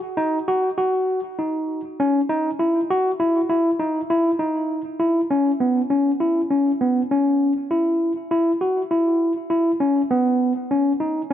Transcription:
0.17 0.38 D#4 medium
0.48 0.69 F#4 medium
0.78 1.19 F#4 medium
1.39 1.80 D#4 medium
2.00 2.20 C#4 medium
2.29 2.50 D#4 medium
2.59 2.80 E4 medium
2.90 3.11 F#4 medium
3.20 3.40 E4 medium
3.50 3.70 E4 medium
3.80 4.00 D#4 medium
4.10 4.30 E4 medium
4.39 4.81 D#4 medium
5.00 5.20 E4 medium
5.31 5.51 C#4 medium
5.60 5.81 B3 medium
5.90 6.10 C#4 medium
6.20 6.41 E4 medium
6.51 6.71 C#4 medium
6.81 7.01 B3 medium
7.11 7.52 C#4 medium
7.71 8.12 E4 medium
8.31 8.51 E4 medium
8.61 8.81 F#4 medium
8.91 9.32 E4 medium
9.50 9.71 E4 medium
9.80 10.01 C#4 medium
10.11 10.52 B3 medium
10.71 10.91 C#4 medium
11.00 11.21 D#4 medium

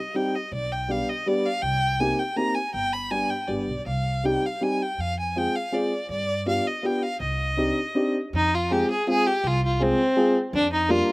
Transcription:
0.00 0.17 D#5 medium
0.14 0.33 G3 medium
0.14 0.33 C4 soft
0.14 0.33 D#4 soft
0.14 0.33 G4 medium
0.14 0.37 G5 medium
0.35 0.52 D#5 medium
0.52 1.00 B1 medium
0.52 0.73 D5 medium
0.72 0.93 G5 medium
0.88 1.07 G3 medium
0.88 1.07 B3 soft
0.88 1.08 D4 soft
0.88 1.08 G4 medium
0.88 1.11 F5 medium
1.09 1.29 D#5 medium
1.26 1.45 G3 medium
1.26 1.45 B3 medium
1.26 1.45 D4 soft
1.26 1.45 G4 medium
1.26 1.47 D5 medium
1.46 1.63 F5 medium
1.62 2.11 C2 medium
1.62 2.01 G5 loud
2.00 2.19 A#3 soft
2.00 2.19 C4 soft
2.00 2.19 D#4 soft
2.00 2.19 G4 medium
2.00 2.20 G#5 medium
2.19 2.38 G5 medium
2.36 2.55 A#3 medium
2.36 2.56 C4 soft
2.36 2.56 D#4 soft
2.36 2.56 G4 soft
2.36 2.56 A#5 medium
2.55 2.73 G#5 medium
2.74 3.22 G1 medium
2.74 2.94 G5 medium
2.93 3.12 B5 medium
3.10 3.30 G3 medium
3.10 3.30 B3 soft
3.10 3.30 D4 soft
3.10 3.30 G4 medium
3.10 3.31 G#5 medium
3.30 3.49 G5 medium
3.47 3.66 G1 medium
3.47 3.67 G3 soft
3.47 3.68 B3 soft
3.47 3.68 D4 soft
3.47 3.68 G4 soft
3.47 3.86 D5 medium
3.68 3.85 B1 medium
3.86 4.35 C2 medium
3.86 4.27 F5 medium
4.24 4.43 G3 medium
4.24 4.43 C4 soft
4.24 4.43 D#4 soft
4.24 4.43 G4 medium
4.24 4.47 G5 medium
4.45 4.64 F5 medium
4.61 4.80 G3 medium
4.61 4.80 C4 soft
4.61 4.80 D#4 soft
4.61 4.80 G4 medium
4.61 4.84 G#5 medium
4.82 5.02 G5 medium
4.98 5.46 F2 medium
4.98 5.18 F5 medium
5.20 5.39 G#5 medium
5.36 5.54 G#3 soft
5.36 5.54 C4 soft
5.36 5.54 F4 soft
5.36 5.54 G#4 medium
5.36 5.57 G5 medium
5.56 5.76 F5 medium
5.72 5.91 G#3 soft
5.72 5.91 C4 soft
5.72 5.91 F4 soft
5.72 5.91 G#4 medium
5.72 6.10 D5 medium
6.09 6.57 G2 medium
6.09 6.44 D5 medium
6.46 6.65 B3 soft
6.46 6.65 D4 soft
6.46 6.65 F4 soft
6.46 6.65 G4 medium
6.46 6.69 F5 medium
6.67 6.87 D#5 medium
6.83 7.02 B3 medium
6.83 7.02 D4 soft
6.83 7.02 F4 soft
6.83 7.02 G4 medium
6.83 7.04 G5 medium
7.02 7.20 F5 medium
7.20 7.69 C2 medium
7.20 8.12 D#5 medium
7.57 7.77 C4 medium
7.57 7.77 D4 soft
7.57 7.77 D#4 medium
7.57 7.77 G4 medium
7.95 8.15 C4 medium
7.95 8.15 D4 medium
7.95 8.15 D#4 medium
7.95 8.15 G4 medium
8.33 8.82 F2 medium
8.33 8.56 D#4 loud
8.55 8.74 F4 medium
8.71 8.90 G#3 medium
8.71 8.90 C4 soft
8.71 8.90 F4 soft
8.71 8.90 G4 medium
8.71 8.90 G#4 medium
8.91 9.07 G#4 medium
9.07 9.26 G#3 medium
9.07 9.26 C4 medium
9.07 9.26 F4 medium
9.07 9.26 G#4 medium
9.07 9.28 G#4 loud
9.27 9.49 G4 medium
9.44 9.91 C2 loud
9.44 9.64 F4 loud
9.65 9.84 F4 medium
9.80 9.99 G#3 medium
9.80 9.99 C4 soft
9.80 10.36 C4 loud
9.80 9.99 F4 medium
9.80 9.99 G#4 medium
10.16 10.35 G#3 medium
10.16 10.35 C4 medium
10.16 10.35 F4 medium
10.16 10.35 G#4 medium
10.53 11.00 F2 loud
10.53 10.71 D4 loud
10.73 10.92 D#4 medium
10.89 11.07 G3 medium
10.89 11.07 A#3 medium
10.89 11.07 D4 medium
10.89 11.08 F4 medium
10.89 11.08 F4 loud

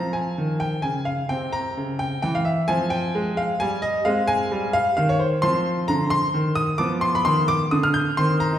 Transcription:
0.00 0.29 F3 medium
0.00 1.27 C4 soft
0.00 0.15 A#5 medium
0.13 0.61 G#5 medium
0.38 0.76 D#3 medium
0.60 0.84 G5 medium
0.82 1.21 C#3 medium
0.82 1.07 G#5 medium
1.05 1.30 F5 medium
1.29 1.68 C3 medium
1.29 2.66 C4 soft
1.29 1.54 G5 loud
1.53 2.00 A#5 loud
1.77 2.14 C#3 medium
1.99 2.21 G5 loud
2.22 2.61 E3 medium
2.22 2.35 G5 loud
2.35 2.47 F5 medium
2.45 2.69 E5 medium
2.68 3.06 F3 medium
2.68 4.03 C4 medium
2.68 2.92 G#5 loud
2.90 3.38 G5 loud
3.15 3.52 G#3 medium
3.37 3.61 F5 loud
3.60 3.98 G3 medium
3.60 3.84 G#5 loud
3.82 4.06 D#5 loud
4.05 4.43 G#3 medium
4.05 5.39 C4 medium
4.05 4.29 F5 loud
4.28 4.74 G#5 loud
4.52 4.89 G3 medium
4.73 4.95 F5 loud
4.97 5.34 D#3 medium
4.97 5.09 F5 loud
5.09 5.21 C#5 medium
5.20 5.43 C5 medium
5.42 5.80 F3 medium
5.42 6.75 C4 medium
5.42 5.88 C6 loud
5.88 6.25 D3 medium
5.88 6.11 A#5 loud
6.10 6.56 C6 loud
6.34 6.70 D#3 medium
6.55 6.79 D#6 loud
6.78 7.16 F3 medium
6.78 8.13 B3 medium
6.78 7.02 D6 loud
7.01 7.13 C6 loud
7.15 7.26 B5 loud
7.25 7.62 D#3 medium
7.25 7.48 C6 loud
7.48 7.71 D6 loud
7.71 8.09 D3 medium
7.71 7.83 D#6 loud
7.83 7.95 F6 loud
7.94 8.17 G6 loud
8.17 8.46 D#3 medium
8.17 8.59 C4 medium
8.17 8.41 C6 loud
8.40 8.59 A#5 loud
8.53 8.59 D#4 medium

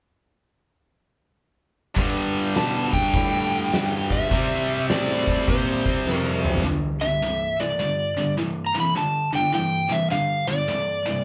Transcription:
1.95 4.28 G2 medium
1.95 2.54 G2 medium
1.95 4.30 D3 medium
1.95 kick medium
1.95 open hi-hat medium
1.99 4.33 G3 medium
2.36 open hi-hat soft
2.55 2.92 B2 medium
2.55 2.93 A5 medium
2.55 snare medium
2.55 open hi-hat medium
2.93 4.14 G5 medium
2.93 muted picked electric bass stroke soft
2.93 kick medium
2.93 open hi-hat soft
3.14 3.71 A2 medium
3.14 kick medium
3.14 open hi-hat medium
3.52 open hi-hat soft
3.73 4.29 G2 medium
3.73 snare medium
3.73 open hi-hat medium
4.11 4.89 E5 medium
4.11 kick medium
4.11 open hi-hat soft
4.31 6.63 C3 medium
4.31 4.88 C3 medium
4.31 6.64 G3 medium
4.31 6.65 C4 medium
4.31 kick medium
4.31 open hi-hat medium
4.70 open hi-hat soft
4.89 5.46 A2 medium
4.89 5.50 D5 medium
4.89 snare medium
4.89 open hi-hat medium
5.27 kick medium
5.27 open hi-hat soft
5.48 5.83 A#2 medium
5.48 6.15 C5 medium
5.48 kick loud
5.48 open hi-hat medium
5.86 muted picked electric bass stroke soft
5.86 kick medium
5.86 open hi-hat soft
6.07 6.63 F2 medium
6.07 snare soft
6.15 6.40 A#4 medium
6.44 mid tom medium
6.55 floor tom medium
6.64 6.98 G2 medium
6.64 6.98 D3 medium
7.01 7.20 G2 medium
7.01 7.20 D3 medium
7.01 7.61 E5 loud
7.23 7.56 G2 medium
7.23 7.56 E3 medium
7.60 7.78 G2 medium
7.60 7.79 E3 medium
7.60 8.34 D5 medium
7.79 8.13 G2 medium
7.79 8.14 D3 medium
8.17 8.36 G2 medium
8.17 8.36 D3 medium
8.37 8.71 G2 medium
8.37 8.72 E3 medium
8.66 8.76 A#5 medium
8.74 8.93 G2 medium
8.74 8.94 E3 medium
8.80 8.97 B5 medium
8.95 9.29 G2 medium
8.95 9.30 D3 medium
8.95 9.35 A5 medium
9.33 9.51 G2 medium
9.33 9.51 D3 medium
9.33 9.53 G5 medium
9.53 9.87 G2 medium
9.53 9.87 E3 medium
9.53 9.93 G5 medium
9.90 10.09 G2 medium
9.90 10.09 E3 medium
9.90 10.11 E5 medium
10.11 10.45 G2 medium
10.11 10.45 D3 medium
10.11 10.50 F5 medium
10.47 10.67 G2 medium
10.47 10.67 D3 medium
10.47 11.24 D5 medium
10.68 11.02 G2 medium
10.68 11.02 E3 medium
11.06 11.24 G2 medium
11.06 11.24 E3 medium

